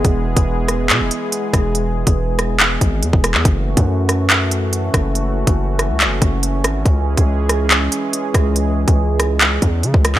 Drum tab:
HH |x--x--x-x-x-x-x-|x--x--x-x-x-x-x-|x--x--x-x-x-x-x-|x--x--x-x-x-x-x-|
CP |--------x-------|--------x------x|--------x-------|--------x-------|
SD |------r-------r-|------r-------r-|------r-------r-|------r-------r-|
BD |o--o----------o-|---o------o--o--|o--o----------o-|---o------o-----|

HH |x--x--x-x-x-x-x-|x--x--x-x-x-x-x-|
CP |--------x-------|--------x------x|
SD |------r-------r-|------r-------r-|
BD |o--o----------o-|---o------o--o--|